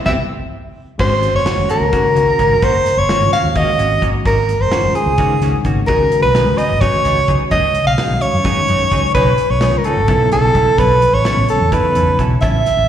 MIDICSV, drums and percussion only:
0, 0, Header, 1, 2, 480
1, 0, Start_track
1, 0, Tempo, 466563
1, 1021, Time_signature, 7, 3, 24, 8
1, 13256, End_track
2, 0, Start_track
2, 0, Title_t, "Drums"
2, 59, Note_on_c, 9, 38, 85
2, 64, Note_on_c, 9, 36, 91
2, 162, Note_off_c, 9, 38, 0
2, 167, Note_off_c, 9, 36, 0
2, 1020, Note_on_c, 9, 49, 85
2, 1024, Note_on_c, 9, 36, 97
2, 1123, Note_off_c, 9, 49, 0
2, 1127, Note_off_c, 9, 36, 0
2, 1263, Note_on_c, 9, 42, 55
2, 1366, Note_off_c, 9, 42, 0
2, 1501, Note_on_c, 9, 38, 102
2, 1501, Note_on_c, 9, 42, 76
2, 1604, Note_off_c, 9, 38, 0
2, 1604, Note_off_c, 9, 42, 0
2, 1743, Note_on_c, 9, 42, 59
2, 1846, Note_off_c, 9, 42, 0
2, 1983, Note_on_c, 9, 42, 77
2, 1985, Note_on_c, 9, 36, 100
2, 2086, Note_off_c, 9, 42, 0
2, 2088, Note_off_c, 9, 36, 0
2, 2226, Note_on_c, 9, 42, 60
2, 2329, Note_off_c, 9, 42, 0
2, 2461, Note_on_c, 9, 38, 33
2, 2461, Note_on_c, 9, 42, 59
2, 2462, Note_on_c, 9, 36, 74
2, 2564, Note_off_c, 9, 38, 0
2, 2564, Note_off_c, 9, 42, 0
2, 2565, Note_off_c, 9, 36, 0
2, 2699, Note_on_c, 9, 42, 81
2, 2701, Note_on_c, 9, 36, 105
2, 2802, Note_off_c, 9, 42, 0
2, 2804, Note_off_c, 9, 36, 0
2, 2944, Note_on_c, 9, 38, 30
2, 2944, Note_on_c, 9, 42, 61
2, 3046, Note_off_c, 9, 38, 0
2, 3046, Note_off_c, 9, 42, 0
2, 3182, Note_on_c, 9, 38, 105
2, 3182, Note_on_c, 9, 42, 79
2, 3285, Note_off_c, 9, 38, 0
2, 3285, Note_off_c, 9, 42, 0
2, 3425, Note_on_c, 9, 42, 59
2, 3528, Note_off_c, 9, 42, 0
2, 3658, Note_on_c, 9, 42, 80
2, 3659, Note_on_c, 9, 36, 102
2, 3761, Note_off_c, 9, 42, 0
2, 3762, Note_off_c, 9, 36, 0
2, 3900, Note_on_c, 9, 42, 60
2, 4003, Note_off_c, 9, 42, 0
2, 4138, Note_on_c, 9, 36, 70
2, 4139, Note_on_c, 9, 42, 63
2, 4241, Note_off_c, 9, 36, 0
2, 4242, Note_off_c, 9, 42, 0
2, 4377, Note_on_c, 9, 36, 98
2, 4380, Note_on_c, 9, 42, 78
2, 4480, Note_off_c, 9, 36, 0
2, 4483, Note_off_c, 9, 42, 0
2, 4618, Note_on_c, 9, 42, 59
2, 4721, Note_off_c, 9, 42, 0
2, 4851, Note_on_c, 9, 38, 109
2, 4851, Note_on_c, 9, 42, 82
2, 4954, Note_off_c, 9, 38, 0
2, 4954, Note_off_c, 9, 42, 0
2, 5093, Note_on_c, 9, 42, 58
2, 5196, Note_off_c, 9, 42, 0
2, 5328, Note_on_c, 9, 42, 76
2, 5332, Note_on_c, 9, 36, 108
2, 5431, Note_off_c, 9, 42, 0
2, 5435, Note_off_c, 9, 36, 0
2, 5573, Note_on_c, 9, 38, 33
2, 5573, Note_on_c, 9, 42, 59
2, 5676, Note_off_c, 9, 38, 0
2, 5676, Note_off_c, 9, 42, 0
2, 5809, Note_on_c, 9, 42, 58
2, 5812, Note_on_c, 9, 36, 72
2, 5912, Note_off_c, 9, 42, 0
2, 5915, Note_off_c, 9, 36, 0
2, 6053, Note_on_c, 9, 36, 100
2, 6054, Note_on_c, 9, 42, 76
2, 6156, Note_off_c, 9, 36, 0
2, 6157, Note_off_c, 9, 42, 0
2, 6293, Note_on_c, 9, 42, 62
2, 6396, Note_off_c, 9, 42, 0
2, 6532, Note_on_c, 9, 38, 99
2, 6532, Note_on_c, 9, 42, 77
2, 6634, Note_off_c, 9, 38, 0
2, 6634, Note_off_c, 9, 42, 0
2, 6771, Note_on_c, 9, 42, 60
2, 6874, Note_off_c, 9, 42, 0
2, 7010, Note_on_c, 9, 42, 82
2, 7011, Note_on_c, 9, 36, 103
2, 7113, Note_off_c, 9, 42, 0
2, 7114, Note_off_c, 9, 36, 0
2, 7252, Note_on_c, 9, 38, 33
2, 7252, Note_on_c, 9, 42, 57
2, 7355, Note_off_c, 9, 38, 0
2, 7355, Note_off_c, 9, 42, 0
2, 7490, Note_on_c, 9, 42, 60
2, 7492, Note_on_c, 9, 36, 72
2, 7593, Note_off_c, 9, 42, 0
2, 7595, Note_off_c, 9, 36, 0
2, 7728, Note_on_c, 9, 42, 80
2, 7732, Note_on_c, 9, 36, 101
2, 7831, Note_off_c, 9, 42, 0
2, 7835, Note_off_c, 9, 36, 0
2, 7968, Note_on_c, 9, 42, 66
2, 8071, Note_off_c, 9, 42, 0
2, 8211, Note_on_c, 9, 38, 109
2, 8211, Note_on_c, 9, 42, 78
2, 8314, Note_off_c, 9, 38, 0
2, 8314, Note_off_c, 9, 42, 0
2, 8449, Note_on_c, 9, 42, 56
2, 8552, Note_off_c, 9, 42, 0
2, 8689, Note_on_c, 9, 38, 35
2, 8689, Note_on_c, 9, 42, 83
2, 8692, Note_on_c, 9, 36, 98
2, 8792, Note_off_c, 9, 38, 0
2, 8792, Note_off_c, 9, 42, 0
2, 8795, Note_off_c, 9, 36, 0
2, 8931, Note_on_c, 9, 42, 55
2, 9034, Note_off_c, 9, 42, 0
2, 9171, Note_on_c, 9, 42, 58
2, 9173, Note_on_c, 9, 36, 72
2, 9274, Note_off_c, 9, 42, 0
2, 9276, Note_off_c, 9, 36, 0
2, 9410, Note_on_c, 9, 42, 73
2, 9412, Note_on_c, 9, 36, 101
2, 9513, Note_off_c, 9, 42, 0
2, 9515, Note_off_c, 9, 36, 0
2, 9647, Note_on_c, 9, 42, 56
2, 9750, Note_off_c, 9, 42, 0
2, 9885, Note_on_c, 9, 38, 112
2, 9885, Note_on_c, 9, 42, 80
2, 9988, Note_off_c, 9, 38, 0
2, 9988, Note_off_c, 9, 42, 0
2, 10125, Note_on_c, 9, 42, 58
2, 10228, Note_off_c, 9, 42, 0
2, 10367, Note_on_c, 9, 42, 75
2, 10373, Note_on_c, 9, 36, 106
2, 10470, Note_off_c, 9, 42, 0
2, 10475, Note_off_c, 9, 36, 0
2, 10613, Note_on_c, 9, 38, 30
2, 10613, Note_on_c, 9, 42, 61
2, 10716, Note_off_c, 9, 38, 0
2, 10716, Note_off_c, 9, 42, 0
2, 10851, Note_on_c, 9, 42, 60
2, 10855, Note_on_c, 9, 36, 77
2, 10954, Note_off_c, 9, 42, 0
2, 10958, Note_off_c, 9, 36, 0
2, 11092, Note_on_c, 9, 42, 78
2, 11095, Note_on_c, 9, 36, 102
2, 11195, Note_off_c, 9, 42, 0
2, 11198, Note_off_c, 9, 36, 0
2, 11337, Note_on_c, 9, 42, 65
2, 11440, Note_off_c, 9, 42, 0
2, 11575, Note_on_c, 9, 38, 104
2, 11575, Note_on_c, 9, 42, 85
2, 11678, Note_off_c, 9, 38, 0
2, 11678, Note_off_c, 9, 42, 0
2, 11816, Note_on_c, 9, 42, 62
2, 11919, Note_off_c, 9, 42, 0
2, 12058, Note_on_c, 9, 36, 108
2, 12058, Note_on_c, 9, 42, 85
2, 12161, Note_off_c, 9, 36, 0
2, 12161, Note_off_c, 9, 42, 0
2, 12297, Note_on_c, 9, 42, 63
2, 12399, Note_off_c, 9, 42, 0
2, 12541, Note_on_c, 9, 36, 74
2, 12541, Note_on_c, 9, 42, 57
2, 12643, Note_off_c, 9, 36, 0
2, 12644, Note_off_c, 9, 42, 0
2, 12778, Note_on_c, 9, 42, 80
2, 12782, Note_on_c, 9, 36, 102
2, 12881, Note_off_c, 9, 42, 0
2, 12885, Note_off_c, 9, 36, 0
2, 13027, Note_on_c, 9, 38, 33
2, 13027, Note_on_c, 9, 42, 57
2, 13130, Note_off_c, 9, 38, 0
2, 13130, Note_off_c, 9, 42, 0
2, 13256, End_track
0, 0, End_of_file